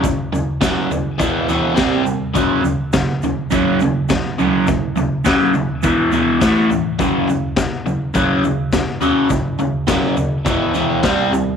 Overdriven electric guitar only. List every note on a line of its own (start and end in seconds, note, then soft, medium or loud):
0.03 0.30 F#2 medium
0.03 0.30 C#3 medium
0.33 0.59 F#2 medium
0.33 0.59 C#3 medium
0.61 0.89 F#2 medium
0.61 0.89 C#3 loud
0.61 0.89 F#3 loud
0.91 1.17 F#2 medium
0.91 1.17 C#3 medium
1.18 1.46 E2 medium
1.18 1.47 B2 medium
1.18 1.47 E3 medium
1.48 1.76 E2 medium
1.48 1.74 B2 loud
1.48 1.75 E3 loud
1.74 2.02 C3 medium
1.74 2.03 G3 medium
1.74 2.04 C4 loud
2.04 2.31 C3 medium
2.04 2.32 G3 medium
2.34 2.61 F#2 medium
2.34 2.61 C#3 medium
2.34 2.63 F#3 medium
2.62 2.90 F#2 medium
2.62 2.90 C#3 medium
2.93 3.20 F#2 medium
2.93 3.20 C#3 medium
3.24 3.49 F#2 medium
3.24 3.50 C#3 medium
3.51 3.79 F#2 medium
3.51 3.79 C#3 medium
3.51 3.79 F#3 loud
3.82 4.07 F#2 medium
3.82 4.07 C#3 medium
4.09 4.35 F#2 medium
4.09 4.36 C#3 loud
4.38 4.66 F#2 medium
4.38 4.66 C#3 medium
4.38 4.66 F#3 medium
4.67 4.93 F#2 medium
4.67 4.94 C#3 medium
4.96 5.22 F#2 medium
4.96 5.23 C#3 medium
5.25 5.52 F#2 medium
5.25 5.53 C#3 medium
5.25 5.53 F#3 medium
5.54 5.81 F#2 medium
5.54 5.80 C#3 medium
5.83 6.11 E2 medium
5.83 6.11 B2 medium
5.83 6.11 E3 medium
6.12 6.39 E2 medium
6.12 6.40 B2 loud
6.12 6.40 E3 loud
6.41 6.68 A2 loud
6.41 6.69 E3 loud
6.41 6.69 A3 loud
6.70 6.96 A2 medium
6.70 6.97 E3 medium
6.99 7.26 F#2 loud
6.99 7.27 C#3 medium
6.99 7.27 F#3 loud
7.28 7.54 F#2 medium
7.28 7.55 C#3 medium
7.57 7.83 F#2 medium
7.57 7.83 C#3 medium
7.86 8.12 F#2 medium
7.86 8.12 C#3 medium
8.14 8.42 F#2 medium
8.14 8.42 C#3 loud
8.14 8.43 F#3 loud
8.44 8.70 F#2 medium
8.44 8.70 C#3 medium
8.73 8.99 F#2 medium
8.73 8.99 C#3 loud
9.01 9.28 F#2 medium
9.01 9.29 C#3 medium
9.01 9.29 F#3 medium
9.30 9.56 F#2 medium
9.30 9.56 C#3 medium
9.59 9.85 F#2 medium
9.59 9.86 C#3 medium
9.87 10.15 F#2 medium
9.87 10.15 C#3 medium
9.87 10.16 F#3 loud
10.17 10.43 F#2 medium
10.17 10.43 C#3 medium
10.45 10.73 E2 medium
10.45 10.73 B2 medium
10.45 10.74 E3 medium
10.74 11.02 E2 loud
10.74 11.02 B2 loud
10.74 11.02 E3 loud
11.03 11.31 C3 medium
11.03 11.31 G3 loud
11.03 11.31 C4 loud
11.33 11.57 C3 medium
11.33 11.57 G3 medium